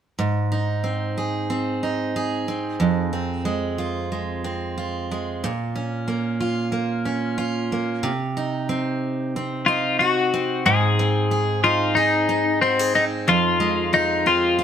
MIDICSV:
0, 0, Header, 1, 3, 480
1, 0, Start_track
1, 0, Tempo, 653595
1, 145, Time_signature, 4, 2, 24, 8
1, 10749, End_track
2, 0, Start_track
2, 0, Title_t, "Clean electric guitar"
2, 0, Program_c, 0, 27
2, 7096, Note_on_c, 0, 65, 71
2, 7335, Note_off_c, 0, 65, 0
2, 7338, Note_on_c, 0, 66, 74
2, 7827, Note_off_c, 0, 66, 0
2, 7830, Note_on_c, 0, 68, 75
2, 8518, Note_off_c, 0, 68, 0
2, 8547, Note_on_c, 0, 65, 69
2, 8769, Note_off_c, 0, 65, 0
2, 8777, Note_on_c, 0, 63, 75
2, 9262, Note_off_c, 0, 63, 0
2, 9265, Note_on_c, 0, 60, 73
2, 9510, Note_off_c, 0, 60, 0
2, 9513, Note_on_c, 0, 63, 75
2, 9577, Note_off_c, 0, 63, 0
2, 9759, Note_on_c, 0, 65, 74
2, 10237, Note_on_c, 0, 63, 78
2, 10245, Note_off_c, 0, 65, 0
2, 10477, Note_off_c, 0, 63, 0
2, 10480, Note_on_c, 0, 65, 79
2, 10749, Note_off_c, 0, 65, 0
2, 10749, End_track
3, 0, Start_track
3, 0, Title_t, "Steel-string acoustic guitar"
3, 0, Program_c, 1, 25
3, 136, Note_on_c, 1, 44, 61
3, 380, Note_on_c, 1, 63, 49
3, 614, Note_on_c, 1, 60, 45
3, 863, Note_on_c, 1, 68, 49
3, 1097, Note_off_c, 1, 60, 0
3, 1100, Note_on_c, 1, 60, 43
3, 1340, Note_off_c, 1, 63, 0
3, 1343, Note_on_c, 1, 63, 47
3, 1583, Note_off_c, 1, 68, 0
3, 1586, Note_on_c, 1, 68, 49
3, 1819, Note_off_c, 1, 60, 0
3, 1822, Note_on_c, 1, 60, 45
3, 2051, Note_off_c, 1, 44, 0
3, 2054, Note_on_c, 1, 41, 59
3, 2294, Note_off_c, 1, 63, 0
3, 2297, Note_off_c, 1, 60, 0
3, 2297, Note_on_c, 1, 60, 47
3, 2535, Note_on_c, 1, 56, 45
3, 2775, Note_off_c, 1, 68, 0
3, 2778, Note_on_c, 1, 65, 48
3, 3015, Note_off_c, 1, 56, 0
3, 3024, Note_on_c, 1, 56, 47
3, 3255, Note_off_c, 1, 60, 0
3, 3263, Note_on_c, 1, 60, 47
3, 3504, Note_off_c, 1, 65, 0
3, 3507, Note_on_c, 1, 65, 50
3, 3745, Note_off_c, 1, 56, 0
3, 3756, Note_on_c, 1, 56, 43
3, 3981, Note_off_c, 1, 41, 0
3, 3993, Note_on_c, 1, 46, 63
3, 4033, Note_off_c, 1, 60, 0
3, 4039, Note_off_c, 1, 56, 0
3, 4226, Note_on_c, 1, 61, 44
3, 4463, Note_on_c, 1, 58, 45
3, 4700, Note_off_c, 1, 65, 0
3, 4703, Note_on_c, 1, 65, 47
3, 4926, Note_off_c, 1, 58, 0
3, 4935, Note_on_c, 1, 58, 43
3, 5171, Note_off_c, 1, 61, 0
3, 5180, Note_on_c, 1, 61, 47
3, 5409, Note_off_c, 1, 65, 0
3, 5418, Note_on_c, 1, 65, 54
3, 5661, Note_off_c, 1, 58, 0
3, 5670, Note_on_c, 1, 58, 43
3, 5894, Note_off_c, 1, 46, 0
3, 5897, Note_on_c, 1, 48, 62
3, 5950, Note_off_c, 1, 65, 0
3, 5951, Note_off_c, 1, 61, 0
3, 5957, Note_off_c, 1, 58, 0
3, 6145, Note_on_c, 1, 63, 49
3, 6382, Note_on_c, 1, 60, 49
3, 6871, Note_off_c, 1, 60, 0
3, 6874, Note_on_c, 1, 60, 50
3, 7106, Note_off_c, 1, 63, 0
3, 7109, Note_on_c, 1, 63, 49
3, 7348, Note_on_c, 1, 66, 50
3, 7588, Note_off_c, 1, 60, 0
3, 7591, Note_on_c, 1, 60, 51
3, 7821, Note_off_c, 1, 48, 0
3, 7827, Note_on_c, 1, 44, 69
3, 7875, Note_off_c, 1, 66, 0
3, 8069, Note_off_c, 1, 60, 0
3, 8072, Note_on_c, 1, 60, 51
3, 8308, Note_on_c, 1, 68, 50
3, 8545, Note_off_c, 1, 63, 0
3, 8548, Note_on_c, 1, 63, 51
3, 8784, Note_off_c, 1, 68, 0
3, 8787, Note_on_c, 1, 68, 55
3, 9021, Note_off_c, 1, 63, 0
3, 9024, Note_on_c, 1, 63, 54
3, 9267, Note_off_c, 1, 68, 0
3, 9270, Note_on_c, 1, 66, 51
3, 9395, Note_off_c, 1, 66, 0
3, 9395, Note_on_c, 1, 68, 43
3, 9509, Note_off_c, 1, 60, 0
3, 9512, Note_on_c, 1, 60, 47
3, 9745, Note_off_c, 1, 44, 0
3, 9750, Note_on_c, 1, 41, 68
3, 9797, Note_off_c, 1, 68, 0
3, 9985, Note_off_c, 1, 60, 0
3, 9988, Note_on_c, 1, 56, 51
3, 10230, Note_on_c, 1, 65, 56
3, 10252, Note_off_c, 1, 63, 0
3, 10473, Note_on_c, 1, 60, 48
3, 10709, Note_off_c, 1, 65, 0
3, 10711, Note_on_c, 1, 65, 54
3, 10749, Note_off_c, 1, 41, 0
3, 10749, Note_off_c, 1, 56, 0
3, 10749, Note_off_c, 1, 60, 0
3, 10749, Note_off_c, 1, 65, 0
3, 10749, End_track
0, 0, End_of_file